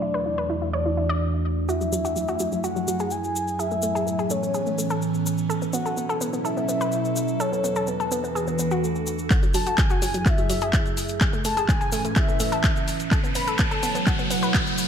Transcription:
Already playing: E2 E3 A3 D4 F#4 D5
0.02 E4
0.14 B4
0.26 E4
0.38 B4
0.50 E4
0.62 E4
0.73 C#5 D5
0.86 E4
0.97 E4
1.09 D5
1.69 F#2 F#3 A3 E4 F#4 E5 G#5, cabasa
1.81 F#3, cabasa
1.92 F#3, cabasa
2.05 F#4, cabasa
2.16 F#3, cabasa
2.28 F#4, cabasa
2.39 F#3, cabasa
2.52 F#3, cabasa
2.64 F#4 F#5, cabasa
2.76 F#3, cabasa
2.88 F#3, cabasa
2.99 G#4, cabasa
3.11 G#5, cabasa
3.24 cabasa
3.36 cabasa
3.48 cabasa
3.59 A2 E3 B3 C#4 G#4 E5, cabasa
3.71 A3, cabasa
3.82 A3, cabasa
3.95 G#4, cabasa
4.07 A3, cabasa
4.19 G#4, cabasa
4.30 A3 C#5, cabasa
4.43 A3, cabasa
4.54 G#4, cabasa
4.66 A3, cabasa
4.78 A3, cabasa
4.90 A4, cabasa
5.02 cabasa
5.14 cabasa
5.26 cabasa
5.38 cabasa
5.50 B2 F#3 E4 A4, cabasa
5.62 B3, cabasa
5.73 B3 F#5, cabasa
5.86 A4, cabasa
5.97 B3, cabasa
6.09 A4, cabasa
6.21 B3, cabasa
6.33 B3, cabasa
6.45 A4 E5, cabasa
6.57 B3, cabasa
6.69 B3, cabasa
6.81 B4, cabasa
6.92 cabasa
7.05 cabasa
7.16 cabasa
7.28 cabasa
7.40 E2 E3 D4 F#4 A4 C#5, cabasa
7.52 B3, cabasa
7.64 B3, cabasa
7.76 A4, cabasa
7.87 B3 B4, cabasa
8.00 A4, cabasa
8.12 B3, cabasa
8.24 B3, cabasa
8.35 G#4 B4, cabasa
8.47 B3, cabasa
8.59 B3, cabasa
8.71 F#4, cabasa
8.83 A4, cabasa
8.95 cabasa
9.07 cabasa
9.18 cabasa
9.31 F#2 F#3 A3 E4 F#4 G#4, kick, clap, closed hi-hat, riser, cabasa
9.43 F#3, closed hi-hat, cabasa
9.54 F#3 A5, open hi-hat, cabasa
9.66 F#4, closed hi-hat, cabasa
9.78 F#3 G#5, kick, clap, closed hi-hat, cabasa
9.90 F#4, closed hi-hat, cabasa
10.02 F#3, open hi-hat, cabasa
10.14 F#3, closed hi-hat, cabasa
10.26 F#4 E5, kick, clap, closed hi-hat, cabasa
10.38 F#3, closed hi-hat, cabasa
10.50 F#3, open hi-hat, cabasa
10.61 G#4, closed hi-hat, cabasa
10.73 kick, clap, closed hi-hat, cabasa
10.86 closed hi-hat, cabasa
10.97 open hi-hat, cabasa
11.08 closed hi-hat, cabasa
11.21 A2 E3 C#4 G#4 B4, kick, clap, closed hi-hat, cabasa
11.33 A3, closed hi-hat, cabasa
11.45 A3 A5, open hi-hat, cabasa
11.57 G#4, closed hi-hat, cabasa
11.69 A3 G#5, kick, clap, closed hi-hat, cabasa
11.81 G#4, closed hi-hat, cabasa
11.92 A3, open hi-hat, cabasa
12.05 A3, closed hi-hat, cabasa
12.16 G#4 E5, kick, clap, closed hi-hat, cabasa
12.28 A3, closed hi-hat, cabasa
12.40 A3, open hi-hat, cabasa
12.52 A4, closed hi-hat, cabasa
12.64 kick, clap, closed hi-hat, cabasa
12.76 closed hi-hat, cabasa
12.88 open hi-hat, cabasa
13.00 closed hi-hat, cabasa
13.11 B2 F#3 A3 E4 A4 C#5, kick, clap, closed hi-hat, cabasa
13.24 B3, closed hi-hat, cabasa
13.35 B3 B5, open hi-hat, cabasa
13.47 A4, closed hi-hat, cabasa
13.58 B3 A5, kick, clap, closed hi-hat, cabasa
13.71 A4, closed hi-hat, cabasa
13.83 B3, open hi-hat, cabasa
13.95 B3, closed hi-hat, cabasa
14.07 A4 F#5, kick, clap, closed hi-hat, cabasa
14.19 B3, closed hi-hat, cabasa
14.30 B3, open hi-hat, cabasa
14.43 B4, closed hi-hat, cabasa
14.54 kick, clap, closed hi-hat, cabasa
14.67 closed hi-hat, cabasa
14.78 open hi-hat, cabasa

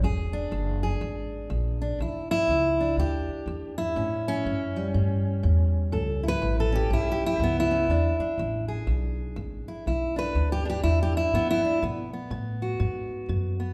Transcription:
0.02 E1 E2 G#4
0.33 D4
0.51 F#1 E2
0.83 G#4
1.01 G#1 E2
1.50 A#1 E2
1.82 D4
1.99 B1 E2 E4
2.31 E4
2.48 C#2 E2
2.80 D4
2.97 D2 E2 G4
3.27 muted upright bass stroke
3.46 E2
3.78 E4
3.96 A2 C#4
4.28 C#4
4.45 F#2 A2
4.76 G3
4.94 G2 A2
5.43 E2 A2
5.92 C#2 A2 A4
6.23 E4
6.28 B4
6.42 A1 A2
6.60 A4
6.72 C#4 G4
6.90 B1 A2 E4
7.12 G4
7.26 E4
7.39 C#2 A2
7.43 B3
7.60 E4
7.71 C#4
7.88 E2 D4
8.19 D4, muted upright bass stroke
8.38 A1 E2
8.68 G#4
8.87 B1 E2
9.36 G#1 E2
9.66 E4, muted upright bass stroke
9.86 B1 E2 E4
10.16 D4 B4
10.35 D2 E2
10.52 G4
10.65 D4
10.70 G4
10.83 E2 E4
11.03 G4
11.17 E4
11.33 E2 G#2 B3
11.51 E4
11.65 D4
11.82 B2 B3
12.13 B3
12.30 A2 B2
12.62 F#4
12.80 G#2 B2
13.29 F#2 B2
13.60 B3

